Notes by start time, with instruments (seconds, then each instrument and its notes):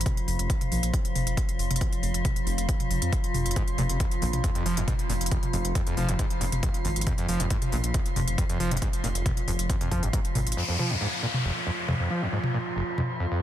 Already playing: synth drone F3 F4
0.01 closed hi-hat
0.06 kick, closed hi-hat, mid tom
0.17 closed hi-hat
0.28 detuned saw bass F1, open hi-hat
0.39 detuned saw bass F1, closed hi-hat
0.50 kick, closed hi-hat
0.61 closed hi-hat, mid tom
0.72 detuned saw bass A#1, open hi-hat
0.83 detuned saw bass A#1, closed hi-hat
0.94 kick, closed hi-hat
1.05 closed hi-hat
1.15 detuned saw bass F1, open hi-hat, mid tom
1.27 detuned saw bass F1, closed hi-hat
1.37 kick, closed hi-hat
1.49 closed hi-hat
1.59 detuned saw bass F1, open hi-hat
1.71 detuned saw bass F1, closed hi-hat, mid tom
1.76 closed hi-hat
1.81 kick, closed hi-hat
1.93 closed hi-hat
2.03 detuned saw bass F1, open hi-hat
2.14 detuned saw bass F1, closed hi-hat
2.25 kick, closed hi-hat, mid tom
2.36 closed hi-hat
2.47 detuned saw bass F1, open hi-hat
2.58 detuned saw bass F1, closed hi-hat
2.69 kick, closed hi-hat
2.80 closed hi-hat, mid tom
2.91 detuned saw bass F1, open hi-hat
3.02 detuned saw bass F2, closed hi-hat
3.13 kick, closed hi-hat
3.24 closed hi-hat
3.34 detuned saw bass F1, open hi-hat, mid tom
3.46 detuned saw bass F1, closed hi-hat
3.51 closed hi-hat
3.56 acid bass G#2, kick, closed hi-hat
3.68 closed hi-hat
3.78 detuned saw bass F1, acid bass A#2, open hi-hat, mid tom
3.89 detuned saw bass F1, closed hi-hat
4.00 acid bass F1, kick, closed hi-hat
4.11 closed hi-hat
4.22 detuned saw bass A#1, acid bass F2, open hi-hat
4.33 detuned saw bass A#1, closed hi-hat, mid tom
4.44 acid bass F2, kick, closed hi-hat
4.55 acid bass F2, closed hi-hat
4.66 detuned saw bass F1, acid bass F3, open hi-hat
4.77 detuned saw bass F1, acid bass D#2, closed hi-hat
4.88 acid bass G#2, kick, closed hi-hat, mid tom
4.99 closed hi-hat
5.10 detuned saw bass F1, acid bass A#2, open hi-hat
5.21 detuned saw bass F1, closed hi-hat
5.26 closed hi-hat
5.31 acid bass F1, kick, closed hi-hat
5.43 closed hi-hat, mid tom
5.53 detuned saw bass F1, acid bass F2, open hi-hat
5.65 detuned saw bass F1, closed hi-hat
5.75 acid bass F2, kick, closed hi-hat
5.87 acid bass F2, closed hi-hat
5.97 detuned saw bass F1, acid bass F3, open hi-hat, mid tom
6.09 detuned saw bass F1, acid bass D#2, closed hi-hat
6.19 acid bass G#2, kick, closed hi-hat
6.30 closed hi-hat
6.41 detuned saw bass F1, acid bass A#2, open hi-hat
6.52 detuned saw bass F1, closed hi-hat, mid tom
6.63 acid bass F1, kick, closed hi-hat
6.74 closed hi-hat
6.85 detuned saw bass G#1, acid bass F2, open hi-hat
6.96 detuned saw bass G#1, closed hi-hat
7.01 closed hi-hat
7.07 acid bass F2, kick, closed hi-hat, mid tom
7.18 acid bass F2, closed hi-hat
7.29 detuned saw bass F1, acid bass F3, open hi-hat
7.40 detuned saw bass F1, acid bass D#2, closed hi-hat
7.50 acid bass G#2, kick, closed hi-hat
7.62 closed hi-hat, mid tom
7.72 detuned saw bass A#1, acid bass A#2, open hi-hat
7.84 detuned saw bass A#1, closed hi-hat
7.94 acid bass F1, kick, closed hi-hat
8.06 closed hi-hat
8.16 detuned saw bass F1, acid bass F2, open hi-hat, mid tom
8.28 detuned saw bass F1, closed hi-hat
8.38 acid bass F2, kick, closed hi-hat
8.49 acid bass F2, closed hi-hat
8.60 detuned saw bass F1, acid bass F3, open hi-hat
8.71 detuned saw bass F1, acid bass D#2, closed hi-hat, mid tom
8.77 closed hi-hat
8.82 acid bass G#2, kick, closed hi-hat
8.93 closed hi-hat
9.04 detuned saw bass F1, acid bass A#2, open hi-hat
9.15 detuned saw bass F1, closed hi-hat
9.26 acid bass F1, kick, closed hi-hat, mid tom
9.37 closed hi-hat
9.48 detuned saw bass F1, acid bass F2, open hi-hat
9.59 detuned saw bass F1, closed hi-hat
9.70 acid bass F2, kick, closed hi-hat
9.81 acid bass F2, closed hi-hat, mid tom
9.91 detuned saw bass F2, acid bass F3, kick, open hi-hat
10.03 detuned saw bass G#1, acid bass D#2, closed hi-hat
10.13 acid bass G#2, kick, closed hi-hat
10.25 closed hi-hat
10.35 detuned saw bass G#1, acid bass A#2, open hi-hat, mid tom
10.47 detuned saw bass G#1, closed hi-hat
10.52 closed hi-hat
10.57 acid bass F2, synth drone F3 F4, downlifter
10.68 acid bass F2
10.79 acid bass F3, mid tom
10.90 acid bass D#2
11.01 acid bass G#2
11.23 acid bass A#2
11.34 mid tom
11.45 acid bass F1
11.67 acid bass F2
11.88 acid bass F2, mid tom
12.00 acid bass F2
12.10 acid bass F3
12.22 acid bass D#2
12.32 acid bass G#2
12.44 mid tom
12.54 acid bass A#2
12.76 acid bass F1
12.98 acid bass F2, mid tom
13.20 acid bass F2
13.31 acid bass F2